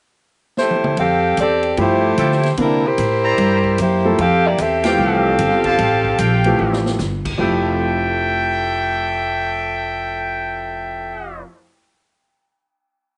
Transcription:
0.57 A3 E4 G4 C5, snare
0.71 high tom
0.84 mid tom
0.97 F2 C4 G4 A4 F5, kick, ride
1.37 E2 G4 A4 D5, kick, hi-hat pedal, ride
1.41 C4
1.63 ride
1.77 G2 F3 A3 E4 G4 C5, kick, ride
2.18 D3 F4 A4 E5 G5, kick, hi-hat pedal, ride
2.32 snare
2.43 snare, ride
2.57 C3 D3 G3 A#3 C4 D4 E4 A#4, kick, ride
2.87 E4 G4 A#4 C5
2.98 A2, kick, hi-hat pedal, ride
3.24 E4 C5 D5 A#5
3.38 G2, kick, ride
3.64 kick
3.78 F#2 A#3 E4 G4 C5, kick, hi-hat pedal, ride
4.05 F3 A3 E4 A4
4.18 F2 C4 G4 A4 F5, kick, ride
4.47 A#3 E4 G4 D5
4.58 E2 C4 G4 A4 E5, kick, hi-hat pedal, ride
4.84 E3 F3 A3 G4 A4 F5 G5, snare, ride
4.88 C4 G4 F5
4.98 C2
5.39 G1, kick, hi-hat pedal, ride
5.64 F4 A4 F5 A5, kick, ride
5.79 A1, kick, ride
6.05 kick
6.18 A#1 A4 F5 G5, kick, hi-hat pedal, ride
6.44 E3 F3 A3 G4, ride
6.59 A1
6.73 snare
6.86 snare
6.99 G1, snare, hi-hat pedal
7.25 kick, crash
7.38 F1 F2 F3 A3 E4 G4 A4 E5 G5

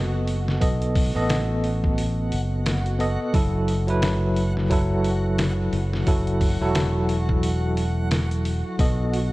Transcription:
Already playing: F#1 B3 F#4 A4 D#5 F#5
0.28 open hi-hat
0.48 snare
0.60 B1 B3 A4 D#5, kick, open hi-hat
0.82 closed hi-hat
0.95 kick, open hi-hat
1.15 A1 B3 A4 D#5
1.30 snare, open hi-hat
1.64 open hi-hat
1.84 kick
1.98 open hi-hat
2.32 F#1, open hi-hat
2.66 snare, open hi-hat
2.86 closed hi-hat
2.99 B3 A4 D#5, open hi-hat
3.34 F#1 F#3 E4 A4, kick, open hi-hat
3.68 open hi-hat
3.87 F#3 E4 B4, closed hi-hat
4.02 snare, open hi-hat
4.36 open hi-hat
4.57 snare
4.70 F#3 E4 A4, kick, open hi-hat
5.04 open hi-hat
5.39 snare, open hi-hat
5.73 F#1, open hi-hat
5.93 snare
6.07 F#1 F#3 E4 A4, kick, open hi-hat
6.27 closed hi-hat
6.41 kick, open hi-hat
6.61 E1 F#3 E4 A4
6.75 snare, open hi-hat
7.09 open hi-hat
7.29 kick
7.43 open hi-hat
7.77 open hi-hat
8.11 snare, open hi-hat
8.31 closed hi-hat
8.45 open hi-hat
8.79 B1 B3 A4 D#5, kick, open hi-hat
9.14 open hi-hat

